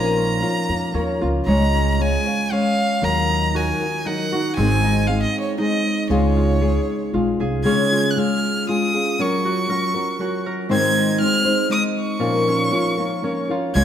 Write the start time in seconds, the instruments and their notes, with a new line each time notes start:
Already playing: upright bass A#1, nylon-string guitar A#2 F3 A#3 C#4 F4 A#4, harp C4 D#4 F#4 A#4, violin A#5
0.17 harp C#4
0.41 nylon-string guitar A#3 C#4 F4 A#4, harp F4
0.69 upright bass F2, nylon-string guitar A#3 C#4 F4 A#4
0.94 upright bass D#2, nylon-string guitar A#3 C#4 F4 A#4, harp C#4
1.21 upright bass C#2, nylon-string guitar A#3 C#4 F4 A#4, harp F4
1.46 upright bass C#2, nylon-string guitar C#3 G#3 C#4 F4 C#5, harp G#3, violin A#5
1.74 harp C#4
1.92 violin A#5
2.00 nylon-string guitar G#3 C#4 F4 C#5, violin G#5
2.26 nylon-string guitar C#4 F4 C#5
2.51 nylon-string guitar G#3 C#4 F4 C#5, harp C#4, violin F5
3.02 upright bass D#2, nylon-string guitar D#3 F#3 D#4 F#4 A#4, violin A#5
3.29 harp D#4
3.54 nylon-string guitar F#3 D#4 F#4 A#4, harp F#4, violin G#5
3.81 nylon-string guitar D#4 F#4 A#4
4.05 nylon-string guitar F#3 D#4 F#4 A#4, harp D#4, violin F#5
4.32 nylon-string guitar D#4 F#4 A#4, harp F#4
4.56 upright bass G#1, nylon-string guitar G#2 D#3 G#3 C4 D#4 G#4, harp C4, violin G#5
4.83 harp D#4
5.07 nylon-string guitar G#3 C4 D#4 G#4, violin F5
5.23 violin D#5
5.41 violin C#5
5.58 nylon-string guitar G#3 C4 D#4 G#4, harp D#4, violin D#5
6.09 upright bass C#2, nylon-string guitar C#3 G#3 C#4 F4 G#4, violin C#5
6.37 harp F4
6.61 nylon-string guitar G#3 C#4 F4 G#4, harp G#4
7.13 upright bass A#1, nylon-string guitar G#3 C#4 F4 G#4, harp F4
7.40 upright bass C2, nylon-string guitar C#4 F4 G#4, harp G#4
7.64 nylon-string guitar C#3 G#3 C#4 F4 G#4, harp C#4, violin G#6
7.92 harp F4
8.11 violin F#6
8.16 nylon-string guitar G#3 C#4 F4 G#4, violin F6
8.68 nylon-string guitar G#3 C#4 F4 G#4, harp F4, violin D#6
8.94 nylon-string guitar C#4 F4 G#4
9.19 nylon-string guitar F#3 C#4 F#4 A#4, violin C#6
9.45 harp F#4
9.69 nylon-string guitar F#3 C#4 F#4 A#4, harp A#4
9.94 nylon-string guitar C#4 F#4 A#4
10.19 nylon-string guitar F#3 C#4 F#4 A#4, harp F#4
10.46 harp A#4
10.69 nylon-string guitar G#2 D#3 G#3 C4 D#4 C5, harp C4, violin G#6
10.96 harp D#4
11.20 nylon-string guitar G#3 C4 D#4 C5, violin F6
11.45 nylon-string guitar G#3 C4 D#4 C5
11.69 nylon-string guitar G#3 C4 D#4 C5, harp D#4, violin D#6
12.00 violin C#6
12.19 nylon-string guitar A#2 F3 A#3 C#4 F4 A#4
12.48 harp C#4
12.71 nylon-string guitar A#3 C#4 F4 A#4, harp F4
12.97 nylon-string guitar A#3 C#4 F4 A#4
13.23 nylon-string guitar A#3 C#4 F4 A#4, harp C#4
13.49 nylon-string guitar A#3 C#4 F4 A#4, harp F4
13.75 upright bass C#2, nylon-string guitar C#3 G#3 C#4 F4 C#5, harp G#3, violin G#6